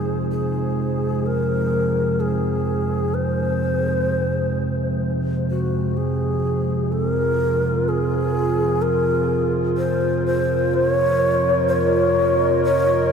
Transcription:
0.00 13.12 F2 medium
0.00 13.12 C3 medium
0.00 6.95 G#3 medium
0.00 9.05 D#4 medium
0.00 0.26 G#4 medium
0.00 9.25 G#4 medium
0.00 9.71 C5 medium
0.31 1.28 G#4 medium
1.26 2.22 A#4 medium
2.20 3.16 G#4 medium
3.14 5.05 C5 medium
5.50 5.99 F#4 medium
5.97 6.94 G#4 medium
6.92 13.12 F4 medium
6.92 7.09 A4 medium
7.09 7.90 A#4 medium
7.89 8.84 G#4 medium
8.28 13.12 A#4 medium
8.82 9.53 A#4 medium
9.78 10.24 C5 medium
10.26 10.74 C5 medium
10.26 13.12 D#5 medium
10.74 10.89 C5 loud
10.89 11.68 C#5 loud
11.68 12.62 C#5 medium
12.65 13.12 C#5 medium

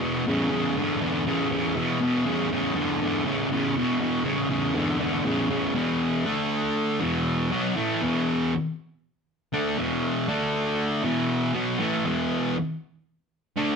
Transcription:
0.01 0.24 E2 medium
0.01 0.24 B2 medium
0.27 0.49 E2 medium
0.27 0.50 C#3 medium
0.50 0.73 E2 medium
0.50 0.74 C#3 medium
0.76 0.99 E2 medium
0.76 0.99 D3 loud
1.01 1.24 E2 medium
1.01 1.24 D3 medium
1.27 1.49 E2 medium
1.27 1.49 C#3 loud
1.52 1.74 E2 medium
1.52 1.74 C#3 medium
1.76 1.99 E2 medium
1.76 1.99 B2 medium
2.01 2.24 E2 medium
2.01 2.24 B2 medium
2.25 2.48 E2 medium
2.25 2.49 C#3 loud
2.51 2.74 E2 medium
2.51 2.74 C#3 medium
2.75 2.98 E2 medium
2.75 2.98 D3 medium
3.01 3.23 E2 medium
3.01 3.24 D3 medium
3.25 3.48 E2 medium
3.25 3.48 C#3 loud
3.52 3.74 E2 medium
3.52 3.74 C#3 medium
3.77 3.99 E2 medium
3.77 3.99 B2 medium
4.00 4.23 E2 medium
4.00 4.24 B2 medium
4.24 4.47 E2 medium
4.24 4.48 C#3 loud
4.49 4.73 E2 medium
4.49 4.73 C#3 medium
4.74 4.98 E2 medium
4.74 4.98 D3 medium
4.99 5.23 E2 medium
4.99 5.23 D3 medium
5.25 5.48 E2 medium
5.25 5.48 C#3 loud
5.50 5.73 E2 medium
5.50 5.73 C#3 medium
5.75 6.25 E2 medium
5.75 6.25 B2 medium
5.75 6.25 E3 medium
6.26 7.01 D3 medium
6.26 7.00 A3 medium
6.26 7.01 D4 medium
7.00 7.51 E2 medium
7.00 7.50 B2 medium
7.00 7.51 E3 medium
7.51 7.76 B2 medium
7.51 7.75 F#3 medium
7.51 7.76 B3 medium
7.76 8.01 A2 medium
7.76 8.01 E3 medium
7.76 8.01 A3 loud
8.01 8.51 E2 medium
8.01 8.52 B2 medium
8.01 8.52 E3 medium
9.53 9.78 D3 medium
9.53 9.78 A3 medium
9.53 9.78 D4 medium
9.78 10.28 E2 medium
9.78 10.28 B2 medium
9.78 10.28 E3 medium
10.28 11.04 D3 medium
10.28 11.04 A3 medium
10.28 11.04 D4 medium
11.04 11.54 E2 medium
11.04 11.52 B2 medium
11.04 11.54 E3 medium
11.54 11.79 B2 medium
11.54 11.79 F#3 medium
11.54 11.79 B3 medium
11.79 12.04 A2 medium
11.79 12.04 E3 medium
11.79 12.05 A3 medium
12.05 12.55 E2 medium
12.05 12.55 B2 medium
12.05 12.55 E3 medium
13.57 13.76 D3 medium
13.57 13.76 A3 medium
13.57 13.76 D4 medium

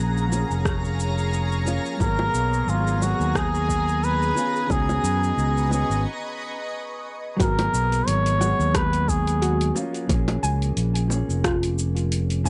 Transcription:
0.00 0.43 A#1 medium
0.00 0.26 F3 medium
0.00 0.27 A#3 medium
0.00 0.28 C#4 medium
0.00 0.29 G#4 medium
0.00 1.97 G#4 medium
0.00 1.98 C#5 medium
0.00 1.98 F5 medium
0.00 4.32 A#5 medium
0.00 6.05 A#5 medium
0.17 cabasa soft
0.28 1.61 F3 medium
0.28 1.62 A#3 medium
0.28 high bongo medium
0.32 1.63 C#4 medium
0.32 1.64 G#4 medium
0.32 cabasa medium
0.50 1.78 F1 medium
0.50 cabasa soft
0.65 kick loud
0.65 cross-stick medium
0.65 cabasa soft
0.85 cabasa soft
1.00 cabasa medium
1.18 cabasa soft
1.33 cabasa soft
1.52 cabasa soft
1.65 1.96 F3 medium
1.65 1.96 A#3 medium
1.65 1.97 C#4 medium
1.65 1.97 F4 medium
1.65 high bongo soft
1.65 cabasa medium
1.86 cabasa soft
1.97 2.28 G#1 medium
1.97 2.96 F#3 medium
1.97 2.97 A#3 medium
1.97 4.34 G#4 medium
1.97 kick loud
2.01 2.98 B3 medium
2.01 2.99 G#4 medium
2.01 2.71 A#4 loud
2.01 7.36 G#5 medium
2.01 high bongo medium
2.01 cabasa soft
2.19 high bongo medium
2.34 2.61 B1 medium
2.34 cabasa medium
2.53 cabasa soft
2.68 3.13 G#1 medium
2.68 3.04 F4 medium
2.68 cabasa soft
2.87 cabasa soft
2.98 4.31 F#3 medium
2.98 4.32 A#3 medium
3.02 4.33 B3 medium
3.02 3.38 F#4 medium
3.02 4.34 G#4 medium
3.02 high bongo medium
3.02 cabasa medium
3.20 4.31 D#2 medium
3.20 cabasa soft
3.35 4.06 G#4 loud
3.35 kick loud
3.35 cross-stick medium
3.35 cabasa soft
3.55 cabasa soft
3.69 kick medium
3.69 cabasa medium
3.89 cabasa soft
4.04 4.72 B4 loud
4.04 cabasa soft
4.22 cabasa soft
4.35 4.65 D#3 medium
4.35 4.66 B3 medium
4.35 4.67 C#4 medium
4.35 4.67 F4 medium
4.35 7.37 B4 medium
4.35 7.37 D#5 medium
4.35 7.37 C#6 medium
4.35 high bongo soft
4.35 cabasa medium
4.56 cabasa soft
4.66 4.97 C#2 medium
4.66 5.66 D#3 medium
4.66 5.67 B3 medium
4.66 kick loud
4.66 high bongo medium
4.71 5.68 C#4 medium
4.71 5.69 F#4 medium
4.71 5.72 G#4 loud
4.71 cabasa soft
4.89 high bongo medium
4.89 cabasa soft
5.04 5.31 F#2 medium
5.04 cabasa medium
5.24 cabasa soft
5.38 5.83 C#2 medium
5.38 cabasa soft
5.57 cabasa soft
5.68 6.03 D#3 medium
5.68 6.04 B3 medium
5.68 high bongo medium
5.72 6.05 C#4 medium
5.72 6.06 F#4 medium
5.72 6.04 G#4 loud
5.72 cabasa medium
5.90 6.05 G#1 medium
5.90 cabasa soft
7.37 7.67 G#1 medium
7.37 8.36 F#3 medium
7.37 8.37 A#3 medium
7.37 7.70 F#4 medium
7.37 kick loud
7.37 open hi-hat medium
7.37 high bongo medium
7.41 8.38 B3 medium
7.41 8.39 G#4 medium
7.41 8.09 A#4 loud
7.41 cabasa soft
7.59 open hi-hat soft
7.59 high bongo medium
7.74 8.01 B1 medium
7.74 cabasa medium
7.92 open hi-hat soft
7.92 cabasa soft
8.07 8.52 G#1 medium
8.07 8.77 C#5 loud
8.07 open hi-hat medium
8.07 cabasa soft
8.26 open hi-hat soft
8.26 cabasa soft
8.38 9.71 F#3 medium
8.38 9.72 G#3 medium
8.38 8.61 F#5 medium
8.38 high bongo medium
8.38 cabasa medium
8.42 9.73 B3 medium
8.42 9.74 G#4 medium
8.60 9.71 D#2 medium
8.60 cabasa soft
8.74 9.10 B4 loud
8.74 kick loud
8.74 cross-stick medium
8.74 open hi-hat medium
8.74 cabasa soft
8.93 open hi-hat soft
8.93 cabasa soft
9.08 9.76 G#4 medium
9.08 kick medium
9.08 cabasa medium
9.27 open hi-hat soft
9.27 cabasa soft
9.42 9.73 F#4 medium
9.42 open hi-hat medium
9.42 cabasa soft
9.61 open hi-hat soft
9.61 cabasa soft
9.75 10.05 F3 medium
9.75 10.06 A#3 medium
9.75 10.06 C#4 medium
9.75 10.07 F4 medium
9.75 high bongo medium
9.75 cabasa medium
9.94 open hi-hat soft
9.94 cabasa soft
10.07 10.37 A#1 medium
10.07 11.06 F3 medium
10.07 11.07 A#3 medium
10.07 11.08 C#4 medium
10.07 kick loud
10.07 open hi-hat medium
10.07 high bongo medium
10.07 cabasa soft
10.13 11.09 G#4 medium
10.28 open hi-hat soft
10.28 high bongo loud
10.43 10.71 C#2 loud
10.43 10.63 G#5 medium
10.43 cabasa medium
10.62 open hi-hat soft
10.62 cabasa soft
10.77 11.22 A#1 loud
10.77 open hi-hat medium
10.77 cabasa soft
10.95 open hi-hat soft
10.95 cabasa soft
11.08 12.40 F3 medium
11.08 12.41 A#3 medium
11.08 12.42 C#4 medium
11.08 high bongo medium
11.08 cabasa medium
11.14 12.43 G#4 medium
11.29 12.49 F1 medium
11.29 cabasa soft
11.44 11.75 F4 loud
11.44 kick loud
11.44 cross-stick medium
11.44 open hi-hat medium
11.44 cabasa soft
11.63 open hi-hat soft
11.63 cabasa soft
11.79 cabasa medium
11.97 open hi-hat soft
11.97 cabasa soft
12.12 open hi-hat medium
12.12 cabasa soft
12.30 open hi-hat soft
12.30 cabasa soft
12.44 12.49 F3 medium
12.44 12.49 A#3 medium
12.44 12.49 C#4 medium
12.44 12.49 G#5 medium
12.44 kick medium
12.44 high bongo medium
12.44 cabasa medium

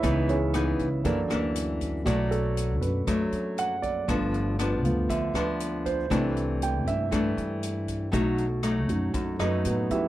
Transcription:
0.00 0.76 C#2 loud
0.00 1.02 C#3 medium
0.00 0.37 E3 soft
0.00 0.36 E3 medium
0.00 0.36 B3 medium
0.00 0.37 B3 soft
0.00 0.36 D#4 medium
0.00 0.26 E4 medium
0.00 0.26 B4 medium
0.00 0.26 C#5 medium
0.00 0.25 E5 medium
0.00 kick medium
0.00 cross-stick medium
0.00 closed hi-hat soft
0.04 0.38 D#4 soft
0.29 1.01 C#4 medium
0.29 1.01 E4 medium
0.29 1.01 G#4 medium
0.29 1.01 C#5 medium
0.29 closed hi-hat soft
0.54 0.87 E3 medium
0.54 0.87 B3 medium
0.54 0.87 D#4 medium
0.54 cross-stick medium
0.54 closed hi-hat soft
0.79 1.03 C#2 medium
0.79 kick soft
0.79 closed hi-hat soft
1.04 2.04 F#2 medium
1.04 1.28 F#2 loud
1.04 1.38 E3 soft
1.04 1.20 E3 soft
1.04 1.38 A#3 soft
1.04 1.20 A#3 medium
1.04 1.52 D4 soft
1.04 1.20 D4 medium
1.04 1.52 A4 soft
1.04 1.52 A#4 soft
1.04 1.52 D5 medium
1.04 kick medium
1.04 closed hi-hat soft
1.30 2.02 D2 medium
1.30 2.02 E3 medium
1.30 2.02 A#3 medium
1.30 2.02 D4 medium
1.30 cross-stick medium
1.30 closed hi-hat soft
1.56 closed hi-hat soft
1.81 kick soft
1.81 closed hi-hat soft
2.05 2.82 B1 loud
2.05 3.04 B2 medium
2.05 2.39 F#3 soft
2.05 2.74 F#3 medium
2.05 2.39 A3 soft
2.05 2.74 A3 medium
2.05 2.40 D4 soft
2.05 2.74 D4 medium
2.05 2.31 D5 medium
2.05 kick medium
2.05 cross-stick medium
2.05 closed hi-hat soft
2.31 2.78 A4 medium
2.31 closed hi-hat soft
2.57 closed hi-hat soft
2.81 3.05 F#2 medium
2.81 3.54 B4 medium
2.81 kick soft
2.81 closed hi-hat soft
3.07 4.06 F#2 medium
3.07 3.31 F#2 medium
3.07 3.75 F#3 medium
3.07 3.75 A3 medium
3.07 3.76 D4 medium
3.07 kick medium
3.07 cross-stick medium
3.07 closed hi-hat soft
3.32 4.04 F#2 medium
3.32 closed hi-hat soft
3.58 3.83 F#5 medium
3.58 closed hi-hat soft
3.82 4.55 D5 medium
3.82 kick soft
3.82 closed hi-hat soft
4.08 4.84 G1 loud
4.08 5.07 G2 medium
4.08 4.55 F3 medium
4.08 4.82 A3 soft
4.08 4.82 B3 soft
4.08 4.55 B3 medium
4.08 4.55 D4 medium
4.08 4.83 F4 soft
4.08 kick medium
4.08 cross-stick medium
4.08 closed hi-hat soft
4.34 closed hi-hat soft
4.59 5.31 F3 medium
4.59 5.31 B3 medium
4.59 5.31 D4 medium
4.59 cross-stick medium
4.59 closed hi-hat soft
4.83 5.08 D2 medium
4.83 5.07 A3 soft
4.83 5.07 B3 soft
4.83 5.07 F4 soft
4.83 kick soft
4.83 closed hi-hat soft
5.09 5.33 D2 medium
5.09 6.08 D3 medium
5.09 5.34 E5 medium
5.09 kick medium
5.09 closed hi-hat soft
5.34 6.06 D2 medium
5.34 6.07 F3 medium
5.34 6.07 B3 medium
5.34 6.07 D4 medium
5.34 5.82 B4 medium
5.34 cross-stick medium
5.34 closed hi-hat soft
5.60 closed hi-hat soft
5.86 6.58 C5 medium
5.86 kick soft
5.86 closed hi-hat soft
6.10 6.87 C2 loud
6.10 7.09 C3 medium
6.10 7.08 E3 medium
6.10 7.08 A3 medium
6.10 8.09 A3 soft
6.10 7.08 D4 medium
6.10 8.10 D4 soft
6.10 8.10 E4 soft
6.10 kick medium
6.10 cross-stick medium
6.10 closed hi-hat soft
6.37 closed hi-hat soft
6.62 6.87 G5 medium
6.62 closed hi-hat soft
6.87 7.10 G2 medium
6.87 7.59 E5 medium
6.87 kick soft
6.87 closed hi-hat soft
7.11 8.10 G2 medium
7.11 7.36 G2 medium
7.11 8.09 E3 medium
7.11 8.09 A3 medium
7.11 8.10 D4 medium
7.11 kick medium
7.11 cross-stick medium
7.11 closed hi-hat soft
7.37 8.09 G2 medium
7.37 closed hi-hat soft
7.63 closed hi-hat soft
7.88 kick soft
7.88 closed hi-hat soft
8.12 8.89 B1 loud
8.12 9.11 B2 medium
8.12 8.45 F#3 medium
8.12 8.46 A3 medium
8.12 8.87 A3 soft
8.12 8.46 D#4 medium
8.12 8.88 D#4 soft
8.12 8.88 F#4 soft
8.12 kick medium
8.12 cross-stick medium
8.12 closed hi-hat soft
8.38 closed hi-hat soft
8.63 9.35 F#3 medium
8.63 9.35 A3 medium
8.63 9.36 D#4 medium
8.63 cross-stick medium
8.63 closed hi-hat soft
8.89 9.13 F#2 medium
8.89 9.12 A3 soft
8.89 9.12 D#4 soft
8.89 9.12 F#4 soft
8.89 kick soft
8.89 closed hi-hat soft
9.14 10.08 F#2 medium
9.14 9.38 F#2 medium
9.14 kick medium
9.14 closed hi-hat soft
9.39 9.63 F#2 medium
9.39 10.08 F#3 medium
9.39 10.08 A3 medium
9.39 10.08 D#4 medium
9.39 9.65 D#4 soft
9.39 9.65 A4 medium
9.39 9.65 B4 medium
9.39 9.64 D#5 medium
9.39 cross-stick medium
9.39 closed hi-hat soft
9.65 9.88 A2 medium
9.65 9.91 B3 soft
9.65 9.91 D#4 soft
9.65 9.91 F#4 soft
9.65 9.90 B4 soft
9.65 closed hi-hat soft
9.90 10.08 F#2 medium
9.90 10.08 E4 medium
9.90 10.08 G4 soft
9.90 10.08 B4 medium
9.90 10.08 E5 medium
9.90 kick soft
9.90 closed hi-hat soft

